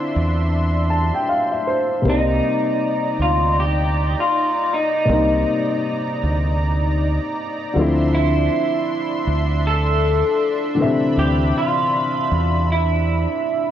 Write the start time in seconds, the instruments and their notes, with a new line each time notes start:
Already playing: upright piano D3 A3 C4 E4 F4, analog synth pad D4 E5 C6
0.16 fingered electric bass E2
0.90 upright piano A5
1.14 upright piano G5
1.29 upright piano F5
1.52 upright piano E5
1.67 upright piano C5
2.02 fingered electric bass C2, upright piano C3 G3 A#3, analog synth pad D#4 D5 A#5
2.07 upright piano C4 D#4, clean electric guitar D#4
3.19 fingered electric bass D2, clean electric guitar F4
3.60 clean electric guitar G4
4.20 clean electric guitar F4
4.74 clean electric guitar D#4
5.05 fingered electric bass C2, upright piano C3 G3
5.09 upright piano A#3 C4 D#4
6.23 fingered electric bass D2
7.74 fingered electric bass D2, upright piano D3 F3 A3, analog synth pad D4 E5 C6
7.79 upright piano C4 E4
8.15 clean electric guitar E4
9.27 fingered electric bass D2
9.67 clean electric guitar A4
10.75 upright piano D3 E3 A3
10.80 upright piano C3 C4 E5, analog synth pad B5
11.17 fingered electric bass D2, clean electric guitar G4
11.58 clean electric guitar F4
12.31 fingered electric bass E2
12.72 clean electric guitar E4